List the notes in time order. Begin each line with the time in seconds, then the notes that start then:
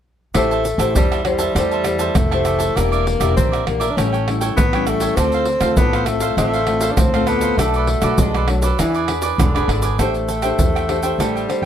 0.35 A1 A3 E4 G4 C5 E5 A5, pandeiro, tamborim, shaker, surdo
0.51 C5 E5 A5, pandeiro, shaker
0.65 muted cavaquinho stroke, pandeiro, shaker
0.78 A1 E4 G4 C5 E5 A5, pandeiro, tamborim, shaker
0.95 E2 E3 G3 G4 C5 E5 A5, pandeiro, shaker, surdo
1.11 C5 E5 A5, pandeiro, tamborim, shaker
1.25 G3 E4 G4 C5, muted cavaquinho stroke, pandeiro, tamborim
1.39 C5 E5 A5, pandeiro, shaker
1.55 E2 A3 E4 G4 C5 E5 A5, pandeiro, tamborim, shaker, surdo
1.71 C5 E5 A5, pandeiro, shaker
1.84 E4 G4 C5, pandeiro, tamborim, shaker
1.99 C5 E5 A5, pandeiro, shaker
2.15 F1 E3 A3, pandeiro, tamborim, shaker, surdo
2.31 E4 G4 C5 E5 A5, pandeiro, tamborim, shaker
2.45 G4 C5 E5 A5, pandeiro, tamborim, shaker
2.59 C5 E5 A5, pandeiro, shaker
2.75 E1 E3 A#3 D4 G4 A#4 D5 E5, pandeiro, tamborim, shaker, surdo
2.92 A#4 D5 E5, pandeiro, shaker
3.06 muted cavaquinho stroke, pandeiro
3.20 E1 A#3 D4 G4 A#4 D5 E5, pandeiro, tamborim, shaker
3.37 A#1 E3 C4 G4 A#4 D5 E5, pandeiro, shaker, surdo
3.52 A#4 D5 E5, pandeiro, tamborim, shaker
3.66 A#3 D4 G4, muted cavaquinho stroke, pandeiro, tamborim, surdo
3.80 A#4 D5 E5, pandeiro, shaker
3.90 D4
3.96 A1 A2 G3 C#4 E4 A4 C#5 G5, pandeiro, tamborim, shaker, surdo
4.00 E4
4.13 A4 C#5 G5, pandeiro, shaker
4.28 G3 C#4 E4, pandeiro, tamborim
4.41 A4 C#5 G5, pandeiro, shaker
4.57 A1 E3 B3, pandeiro, tamborim, shaker, surdo
4.73 G3 C#4 E4 A4 C#5 G5, pandeiro, tamborim, shaker
4.87 A3 E4 A4 C#5 G5, pandeiro, tamborim, shaker
5.00 A4 C#5 G5, pandeiro, shaker
5.17 D2 D3 A3 C4 D4 F4 A4 C5, pandeiro, tamborim, shaker, surdo
5.21 F5
5.32 C5 F5, pandeiro, shaker
5.36 A4
5.45 muted cavaquinho stroke, pandeiro
5.61 D2 A3 C4 F4 A4 C5 F5, pandeiro, tamborim, shaker
5.77 A1 A2 B3 D4 A4 C5, pandeiro, shaker, surdo
5.82 F5
5.93 A4 C5 F5, pandeiro, tamborim, shaker
6.06 A3 C4 F4, muted cavaquinho stroke, pandeiro, tamborim, shaker
6.20 A4 C5 F5, pandeiro, shaker
6.37 A1 D3 A3 C4 D4 F4 A4 C5 F5, pandeiro, tamborim, shaker, surdo
6.54 A4 C5 F5, pandeiro, shaker
6.67 A3 C4 F4, pandeiro, tamborim
6.81 A4 C5 F5, pandeiro, shaker
6.91 D4
6.97 D2 A2 C4, pandeiro, tamborim, shaker, surdo
7.14 A3 C4 F4 A4 C5 F5, pandeiro, tamborim, shaker
7.27 B3 D4 A4 C5 F5, pandeiro, tamborim, shaker
7.41 A4 C5 F5, pandeiro, shaker
7.57 B1 B2 A3 D4 F#4 A4, pandeiro, tamborim, shaker, surdo
7.62 B4 D5
7.74 B4 D5, pandeiro, shaker
7.78 A4
7.87 muted cavaquinho stroke, pandeiro
8.02 B1 A3 D4 F#4 B4 D5, pandeiro, tamborim, shaker
8.06 A4
8.18 B1 F#3 G#3 D4 A4 B4, pandeiro, shaker, surdo
8.22 D5
8.34 A4 B4 D5, pandeiro, tamborim, shaker
8.48 F#3 A3 D4 F#4, muted cavaquinho stroke, pandeiro, tamborim
8.62 A4 B4 D5, pandeiro, shaker
8.79 E2 E3 D4 E4 G#4 B4 D5, pandeiro, tamborim, shaker, surdo
8.94 G#4 B4 D5, pandeiro, shaker
9.08 D4 G#4 B4, pandeiro, tamborim
9.22 G#4 B4 D5, pandeiro, shaker
9.38 E1 B2 D3, pandeiro, tamborim, shaker, surdo
9.55 D4 G#4 B4 D5, pandeiro, tamborim, shaker
9.68 G#1 E4 G#4 B4 D5, pandeiro, tamborim
9.82 G#4 B4 D5, pandeiro, shaker
9.99 A1 A3 D4 G4 A4 C5 E5 G5, pandeiro, tamborim, shaker, surdo
10.14 muted cavaquinho stroke, pandeiro, shaker
10.28 A4 C5 E5 G5, pandeiro, shaker
10.42 D4 G4 C5 E5 G5, pandeiro, tamborim, shaker
10.58 E2 E3, pandeiro, shaker, surdo
10.75 C5 E5 G5, pandeiro, tamborim, shaker
10.88 D4 G4 A4 C5 E5 G5, pandeiro, tamborim
11.03 D4 G4 C5 E5 G5, pandeiro, shaker
11.18 A1 G3 A3 A4 C5 E5 G5, pandeiro, tamborim, shaker, surdo
11.35 C5 E5 G5, pandeiro, shaker
11.48 D4 G4 C5, muted cavaquinho stroke, pandeiro, tamborim
11.62 E2